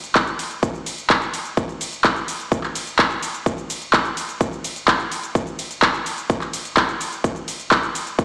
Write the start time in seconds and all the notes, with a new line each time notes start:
0.04 closed hi-hat, shaker
0.15 kick, clap, closed hi-hat, shaker
0.27 closed hi-hat, shaker
0.39 open hi-hat, ride, shaker
0.51 closed hi-hat, shaker
0.63 kick, closed hi-hat, shaker
0.75 shaker
0.86 open hi-hat, ride, shaker
0.98 closed hi-hat, shaker
1.10 kick, clap, closed hi-hat, shaker
1.22 closed hi-hat, shaker
1.34 open hi-hat, ride, shaker
1.45 closed hi-hat, shaker
1.57 kick, closed hi-hat, shaker
1.69 closed hi-hat, shaker
1.81 open hi-hat, ride, shaker
1.93 closed hi-hat, shaker
2.04 kick, clap, closed hi-hat, shaker
2.16 closed hi-hat, shaker
2.28 open hi-hat, ride, shaker
2.40 closed hi-hat, shaker
2.52 kick, closed hi-hat, shaker
2.63 clap, shaker
2.75 open hi-hat, ride, shaker
2.87 closed hi-hat, shaker
2.99 kick, clap, closed hi-hat, shaker
3.11 closed hi-hat, shaker
3.23 open hi-hat, ride, shaker
3.34 closed hi-hat, shaker
3.46 kick, closed hi-hat, shaker
3.58 closed hi-hat, shaker
3.70 open hi-hat, ride, shaker
3.82 closed hi-hat, shaker
3.93 kick, clap, closed hi-hat, shaker
4.05 closed hi-hat, shaker
4.17 open hi-hat, ride, shaker
4.29 closed hi-hat, shaker
4.41 kick, closed hi-hat, shaker
4.53 shaker
4.64 open hi-hat, ride, shaker
4.76 closed hi-hat, shaker
4.88 kick, clap, closed hi-hat, shaker
5.00 closed hi-hat, shaker
5.12 open hi-hat, ride, shaker
5.23 closed hi-hat, shaker
5.35 kick, closed hi-hat, shaker
5.47 closed hi-hat, shaker
5.59 open hi-hat, ride, shaker
5.71 closed hi-hat, shaker
5.82 kick, clap, closed hi-hat, shaker
5.94 closed hi-hat, shaker
6.06 open hi-hat, ride, shaker
6.18 closed hi-hat, shaker
6.30 kick, closed hi-hat, shaker
6.41 clap, closed hi-hat, shaker
6.53 open hi-hat, ride, shaker
6.65 closed hi-hat, shaker
6.77 kick, clap, closed hi-hat, shaker
6.89 closed hi-hat, shaker
7.01 open hi-hat, ride, shaker
7.12 closed hi-hat, shaker
7.24 kick, closed hi-hat, shaker
7.36 closed hi-hat, shaker
7.48 open hi-hat, ride, shaker
7.60 closed hi-hat, shaker
7.71 kick, clap, closed hi-hat, shaker
7.83 closed hi-hat, shaker
7.95 open hi-hat, ride, shaker
8.07 closed hi-hat, shaker
8.19 kick, closed hi-hat, shaker